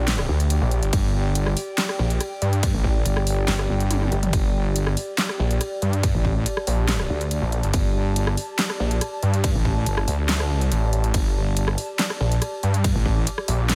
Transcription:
Already playing: A#1 G4 D5 G5
0.08 snare, clap, closed hi-hat, ride
0.19 cross-stick
0.29 D2
0.40 closed hi-hat
0.50 closed hi-hat, ride
0.61 A#1
0.71 closed hi-hat
0.83 G1, closed hi-hat
0.93 G1, kick, closed hi-hat, ride
1.35 closed hi-hat, ride
1.47 cross-stick
1.57 open hi-hat
1.78 snare, clap, closed hi-hat, ride
1.89 cross-stick
1.99 A#1
2.10 closed hi-hat
2.21 cross-stick, closed hi-hat, ride
2.42 G2, closed hi-hat
2.53 closed hi-hat
2.63 kick, closed hi-hat, ride
2.74 A1
2.84 kick
3.06 G1, closed hi-hat, ride
3.17 cross-stick
3.27 open hi-hat
3.48 G1, snare, clap, closed hi-hat, ride, swell
3.59 cross-stick
3.69 G1
3.80 closed hi-hat
3.91 closed hi-hat, high tom, ride
4.02 high tom
4.12 G1, closed hi-hat
4.23 closed hi-hat, mid tom
4.33 G1, kick, closed hi-hat, ride
4.76 closed hi-hat, ride
4.87 cross-stick
4.97 open hi-hat
5.18 snare, clap, closed hi-hat, ride
5.29 cross-stick
5.40 A#1
5.51 closed hi-hat
5.61 cross-stick, closed hi-hat, ride
5.82 G2 A5, closed hi-hat
5.93 closed hi-hat
6.03 kick, closed hi-hat, ride
6.14 A1
6.25 kick
6.46 closed hi-hat, ride
6.57 cross-stick
6.67 A#1, open hi-hat
6.88 snare, clap, closed hi-hat, ride
7.00 cross-stick
7.10 D2
7.21 closed hi-hat
7.31 closed hi-hat, ride
7.42 A#1
7.52 closed hi-hat
7.63 G1, closed hi-hat
7.74 G1, kick, closed hi-hat, ride
8.16 closed hi-hat, ride
8.27 cross-stick
8.37 open hi-hat
8.59 snare, clap, closed hi-hat, ride
8.70 cross-stick
8.80 A#1
8.91 closed hi-hat
9.01 cross-stick, closed hi-hat, ride
9.23 G2, closed hi-hat
9.34 closed hi-hat
9.44 kick, closed hi-hat, ride
9.55 A1
9.65 kick
9.86 G1, closed hi-hat, ride
9.97 cross-stick
10.08 D2, open hi-hat
10.29 snare, clap, closed hi-hat, ride
10.40 cross-stick
10.52 C#2
10.61 closed hi-hat
10.72 A1, closed hi-hat, ride
10.93 closed hi-hat
11.04 closed hi-hat
11.14 G1, kick, closed hi-hat, ride
11.57 closed hi-hat, ride
11.68 cross-stick
11.78 open hi-hat
11.99 snare, clap, closed hi-hat, ride
12.10 cross-stick
12.20 A#1
12.32 closed hi-hat
12.42 cross-stick, closed hi-hat, ride
12.62 G2 D6, closed hi-hat
12.74 closed hi-hat
12.84 kick, closed hi-hat, ride
12.95 A1
13.06 kick
13.27 closed hi-hat, ride
13.38 cross-stick
13.48 A#1, open hi-hat
13.69 snare, clap, closed hi-hat, ride

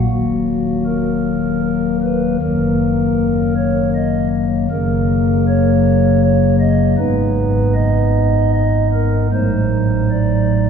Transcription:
0.10 D#1 D#2 D#3 F#3 A#3 F#4
0.86 A#4
1.64 A#4
2.03 B4
2.42 F#1 F#2 D#3 F#3 A#3 A#4
3.56 C#5
3.95 D#5
4.70 F#1 F#2 C#3 F#3 A#3 A#4
5.48 C#5
6.23 C#5
6.60 D#5
6.98 G#1 G#2 G#3 B3 D#4 B4
7.74 D#5
8.53 D#5
8.93 A#4
9.32 A1 A2 F#3 A3 D#4 C5
10.11 D5

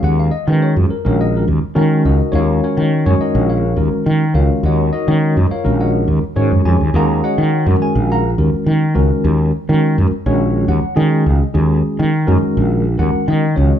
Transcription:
Already playing: D#3 G#3 C#4 F#4 G#4
0.03 D#2 F#5
0.20 F5
0.31 D#5
0.47 D#3 G#3 C#4 F#4 G#4 B4
0.62 C#5
0.76 F#2 F4
0.90 A#4, muted fretless electric bass stroke
1.05 A#1 D#3 G#3 C#4 F#4 A#4 C#5
1.21 D#5
1.37 A#4
1.48 D#2
1.63 muted fretless electric bass stroke
1.75 D#3 G#3 C#4 F#4 A#4
2.05 C#2 D#4 F#4 A#4 D#5
2.32 D#2 D#3 G#3 C#4 F4 F#4 A#4 C#5 F5
2.64 C#4 F#4 A#4 C#5
2.77 D#3
3.06 F#2 D#3 G#3 C#4 F#4 C#5
3.19 D#4 F#4 A#4 D#5, muted fretless electric bass stroke
3.35 A#1
3.50 F4 A#4 C#5 F5
3.76 D#2 D#3 G#3 C#4 F#4 A#4
3.93 muted fretless electric bass stroke
4.06 D#3
4.34 C#2 D#3 G#3 C#4 F4 F#4 A#4 C#5 F5
4.63 D#2 F#4 C#5 D#5 F#5
4.93 D#4 F#4 A#4 D#5
5.07 D#3 G#3 C#4 F#4 C#5
5.37 F#2
5.51 F4 A#4 C#5 F5, muted fretless electric bass stroke
5.64 A#1 D#3 G#3 C#4 F#4 A#4
5.80 F#4 C#5 D#5 F#5
6.08 D#2
6.23 muted fretless electric bass stroke
6.36 G#2 D#3 G#3 C#4 F#4 C#5
6.52 F#2
6.65 F2 G#4 G#5
6.81 D#2
6.94 D#2 D#3 G#3 C#4 F#4 G#4 A#4 F5 F#5 A#5
7.24 F#4 C#5 D#5 F#5
7.38 D#3
7.66 F#2 D#3 G#3 C#4 F#4 A#4
7.80 G#4 G#5, muted fretless electric bass stroke
7.95 A#1
8.12 A#4 F5 F#5 A#5
8.38 D#2 D#3 G#3 C#4 F#4 A#4
8.54 muted fretless electric bass stroke
8.66 D#3
8.94 C#2 D#3 G#3 C#4 F#4 A#4
9.24 D#2
9.69 D#3 G#3 C#4 F#4 A#4
9.98 F#2
10.11 muted fretless electric bass stroke
10.26 A#1 D#3 G#3 C#4 F#4 C#5
10.68 D#2 F#5
10.84 muted fretless electric bass stroke
10.96 D#3 G#3 C#4 F#4 G#4
11.00 D#5
11.26 C#2
11.54 D#2 D#3 G#3 C#4 F#4 G#4
11.99 D#3
12.27 F#2 D#3 G#3 C#4 F#4 A#4
12.42 muted fretless electric bass stroke
12.57 A#1
12.98 D#2 D#3 G#3 C#4 F#4 A#4 F#5
13.15 muted fretless electric bass stroke
13.28 D#3 D#5
13.55 C#2 D#3 G#3 C#4 F#4 C#5

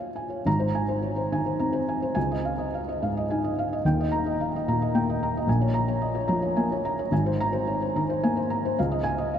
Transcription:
Already playing: A#2 F4 C5 C#5 G#5
0.00 F5
0.16 G#5
0.30 C#5
0.45 G#1 G#2 A#5
0.59 C5
0.75 G#5
0.88 C5
1.02 C#5
1.16 C5
1.32 D#3 G#5
1.46 C5
1.59 C4 A#5
1.73 C5
1.89 G#5
2.02 C5
2.15 C#2 G#5
2.31 D#5
2.45 F5
2.58 D#5
2.74 F5
2.89 D#5
3.02 G#2 F5
3.17 D#5
3.30 D#4 G#5
3.44 D#5
3.58 F5
3.73 D#5
3.85 D#1 D#2 G5
4.00 D#5
4.12 A#5
4.26 D#5
4.41 F5
4.56 D#5
4.68 A#2 A#5
4.82 D#5
4.94 A#3 G5
5.09 D#5
5.23 A#5
5.37 D#5
5.47 A#1 A#2 G#5
5.61 C#5
5.74 A#5
5.88 C#5
6.02 D#5
6.15 C#5
6.28 F3 A#5
6.42 C#5
6.56 A#3 G#5
6.72 C#5
6.85 A#5
6.99 C#5
7.11 G#1 G#2 G#5
7.26 C5
7.40 A#5
7.53 C5
7.67 C#5
7.82 C5
7.96 D#3 A#5
8.09 C5
8.23 A#3 G#5
8.37 C5
8.50 A#5
8.65 C5
8.79 C#2 F5
8.92 D#5
9.03 G#5
9.18 D#5
9.34 F5

